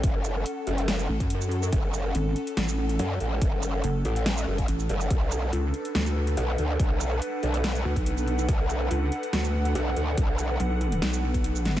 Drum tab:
HH |x---x-xxx--xx-x-|x---x-xxx--xx-x-|x---x-xxx--xx-x-|x---x-xxx--xx-x-|
SH |--x------x---x-x|--x------x------|--x------x---x-x|--x------x------|
SD |--------o-------|--------o-------|--------o-------|--------o-------|
BD |o----------o----|o---------------|o----------o----|o---------------|

HH |x---x-xxx--xx-x-|x---x-xxx--xx-x-|x---x-xxx--xx-x-|
SH |--x------x---x-x|--x------x------|--x------x---x-x|
SD |--------o-------|--------o-------|--------o-----oo|
BD |o----------o----|o---------------|o----------o----|